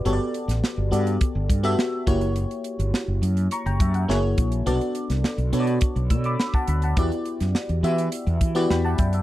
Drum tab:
HH |x-xx--xxx-xx--xx|xxxx--xxxxxx--xx|xxxx-xxxxxxx--xx|xxxx-xxxxxxx--xx|
SD |---oo------oo---|----o-------o---|---oo-------o---|---oo------oo---|
BD |--------o-o---o-|----------o---o-|--------o-o--o--|o---------o---o-|